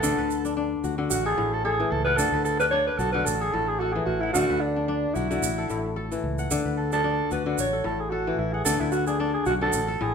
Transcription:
Already playing: D4 F#4 A4 F#5
0.03 D2 D3, shaker
0.18 D2 B4
0.31 shaker
0.45 D4, shaker
0.57 D4
0.84 D2 F#4, shaker
0.98 D3 F#4
1.10 A1 F#4, shaker
1.25 G#4 A4
1.38 A1 A2
1.53 A4
1.64 G#4 A4
1.80 E3
1.90 C#2 A4
2.04 B4 F#5
2.17 D2 D3 A4, shaker
2.32 D2 B4
2.44 A4, shaker
2.60 D4 B4, shaker
2.71 D4 C#5
2.87 B4
2.98 B1 F#4 A4, shaker
3.12 D3 F#4 B4
3.25 A1 A4, shaker
3.41 G#4 A4
3.53 A1 A2 A4
3.67 G#4
3.79 F#4 A4
3.93 E3 G#4
4.06 A1 F#4
4.20 E4 F#5
4.33 D2 D3 F#4, shaker
4.50 D2 B4
4.60 D4
4.76 D4
4.88 D4
5.14 B1 E4 F#4, shaker
5.31 D3 F#4, shaker
5.42 A1, shaker
5.58 A4
5.70 A1 A2, shaker
5.96 A4
6.12 E3, shaker
6.24 C#2
6.38 F#5, shaker
6.51 D2 D3, shaker
6.65 D2 B4
6.77 A4
6.92 D4 A4, shaker
7.04 D4
7.31 D2 F#4 B4, shaker
7.46 D3 F#4
7.58 A1 C#5, shaker
7.73 A4
7.84 A1 A2 A4
8.00 G#4
8.10 F#4 A4
8.27 E3
8.39 A1 E4
8.53 G#4 F#5
8.65 D2 D3 A4, shaker
8.80 D2 E4 B4
8.92 F#4, shaker
9.07 D4 G#4, shaker
9.19 D4 A4
9.34 G#4
9.46 B1 F#4, shaker
9.61 D3 F#4 A4
9.73 A1, shaker
9.88 A4
10.01 A1 A2 G#4

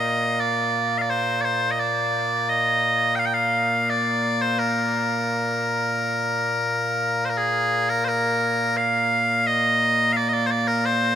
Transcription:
Already playing: A#2 A#3 D#5
0.40 D5
0.98 D5 F5
1.10 C5
1.41 C5 D5
1.71 D#5
1.79 D5
2.49 D#5
3.15 F5 G5
3.26 G5
3.34 F5
3.90 D5
4.42 C5
4.59 A#4
7.25 C5
7.30 A#4
7.37 G#4
7.90 A#4
8.05 A#4 C5
8.77 F5
9.47 D#5
10.12 F5
10.17 D5
10.29 D#5
10.33 D5
10.46 C5
10.51 D5
10.68 A#4
10.86 C5

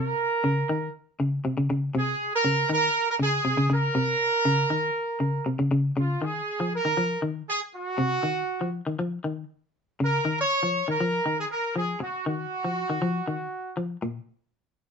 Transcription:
Already playing: C3 A#4
0.44 C#3
0.69 D#3
1.20 C#3
1.45 C3
1.58 C#3
1.70 C#3
1.95 C3 G#4
2.35 A#4
2.45 C#3
2.70 D#3 A#4
3.10 A#4
3.19 C#3 G#4
3.45 C3
3.57 C#3
3.70 C#3 A#4
3.95 C3
4.45 C#3
4.70 D#3
5.20 C#3
5.46 C3
5.59 C#3
5.71 C#3
5.97 C#3 F4
6.22 D#3 G#4
6.60 F3
6.75 A#4
6.85 D#3
6.97 F3
7.22 D#3
7.48 G#4
7.74 F#4
7.98 C3
8.23 D#3
8.61 F3
8.87 D#3
8.99 F3
9.24 D#3
10.00 C#3 A#4
10.25 D#3
10.40 C#5
10.63 F3
10.88 D#3 A#4
11.01 F3
11.26 D#3
11.40 G#4
11.51 A#4
11.76 F3 G#4
12.00 F#4, muted clean electric guitar stroke
12.26 D#3 F#4
12.65 F3
12.90 D#3
13.02 F3
13.28 D#3
13.77 F3
14.02 A#2

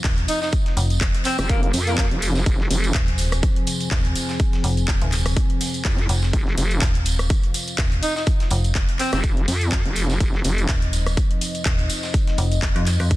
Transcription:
Already playing: F3 C4 C5 F5
0.04 D#1, kick, snare, clap, closed hi-hat
0.18 closed hi-hat
0.28 D#4, closed hi-hat, open hi-hat, tambourine
0.42 D#4, snare, tambourine
0.52 kick, closed hi-hat, tambourine
0.66 snare, closed hi-hat
0.77 F1, closed hi-hat, open hi-hat, tambourine
0.90 closed hi-hat, tambourine
1.01 kick, snare, clap, closed hi-hat
1.14 closed hi-hat
1.25 C4, snare, clap, closed hi-hat, open hi-hat, tambourine
1.38 F1 C4, cross-stick, open hi-hat, tambourine
1.49 A#3, kick, closed hi-hat, tambourine
1.63 A#3, closed hi-hat
1.73 F2, open hi-hat, tambourine
1.87 A#3, closed hi-hat, tambourine
1.98 A#3, kick, snare, clap, closed hi-hat
2.11 F1, closed hi-hat
2.22 closed hi-hat, open hi-hat, tambourine
2.35 snare, tambourine
2.46 F1 G#5, kick, closed hi-hat
2.60 snare
2.70 F1, closed hi-hat, open hi-hat, tambourine
2.84 closed hi-hat, tambourine
2.94 D#1, kick, snare, clap, closed hi-hat
3.08 closed hi-hat
3.18 closed hi-hat, open hi-hat, tambourine
3.32 cross-stick, closed hi-hat, tambourine
3.43 kick, closed hi-hat, tambourine
3.56 closed hi-hat
3.67 closed hi-hat, open hi-hat, tambourine
3.80 closed hi-hat, tambourine
3.91 D#1, kick, snare, clap, closed hi-hat
4.05 closed hi-hat
4.16 closed hi-hat, open hi-hat, tambourine
4.29 snare, tambourine
4.39 kick, closed hi-hat, tambourine
4.53 snare, closed hi-hat
4.64 F1, closed hi-hat, open hi-hat, tambourine
4.77 closed hi-hat, tambourine
4.88 kick, snare, clap, closed hi-hat, tambourine
5.01 D#1, closed hi-hat
5.12 snare, clap, closed hi-hat, open hi-hat, tambourine
5.26 cross-stick, open hi-hat, tambourine
5.37 kick, closed hi-hat
5.50 closed hi-hat
5.61 open hi-hat, tambourine
5.74 closed hi-hat, tambourine
5.85 F2, kick, snare, clap, closed hi-hat
5.98 closed hi-hat
6.09 F1, closed hi-hat, open hi-hat, tambourine
6.22 snare, tambourine
6.33 F1 F5, kick, closed hi-hat, tambourine
6.47 snare
6.57 F1, closed hi-hat, open hi-hat, tambourine
6.70 closed hi-hat, tambourine
6.82 D#1, kick, snare, clap, closed hi-hat
6.95 closed hi-hat
7.06 closed hi-hat, open hi-hat, tambourine
7.19 cross-stick, closed hi-hat, tambourine
7.30 kick, closed hi-hat
7.43 closed hi-hat
7.54 closed hi-hat, open hi-hat, tambourine
7.67 closed hi-hat, tambourine
7.78 D#1, kick, snare, clap, closed hi-hat
7.92 closed hi-hat
8.03 D#4, closed hi-hat, open hi-hat, tambourine
8.16 D#4, snare, tambourine
8.27 kick, closed hi-hat
8.40 snare, closed hi-hat
8.50 F1, closed hi-hat, open hi-hat, tambourine
8.64 closed hi-hat, tambourine
8.75 kick, snare, clap, closed hi-hat, tambourine
8.89 closed hi-hat
8.99 C4, snare, clap, closed hi-hat, open hi-hat, tambourine
9.12 F1 C4, cross-stick, open hi-hat, tambourine
9.24 kick, closed hi-hat
9.37 closed hi-hat
9.48 F2, open hi-hat, tambourine
9.61 closed hi-hat, tambourine
9.72 kick, snare, clap, closed hi-hat
9.85 F1, closed hi-hat
9.96 closed hi-hat, open hi-hat, tambourine
10.10 snare, tambourine
10.20 F1 D#5, kick, closed hi-hat, tambourine
10.34 snare
10.44 F1, closed hi-hat, open hi-hat, tambourine
10.58 closed hi-hat, tambourine
10.69 D#1, kick, snare, clap, closed hi-hat, tambourine
10.82 closed hi-hat
10.93 closed hi-hat, open hi-hat, tambourine
11.06 cross-stick, closed hi-hat, tambourine
11.17 kick, closed hi-hat, tambourine
11.31 closed hi-hat
11.41 closed hi-hat, open hi-hat, tambourine
11.55 closed hi-hat, tambourine
11.65 D#1, kick, snare, clap, closed hi-hat
11.79 closed hi-hat
11.89 closed hi-hat, open hi-hat, tambourine
12.03 snare, tambourine
12.14 kick, closed hi-hat
12.27 snare, closed hi-hat
12.38 F1, closed hi-hat, open hi-hat, tambourine
12.52 closed hi-hat, tambourine
12.62 kick, snare, clap, closed hi-hat
12.76 F2, closed hi-hat
12.86 snare, clap, closed hi-hat, open hi-hat, tambourine
13.00 F2, cross-stick, open hi-hat, tambourine
13.11 kick, closed hi-hat

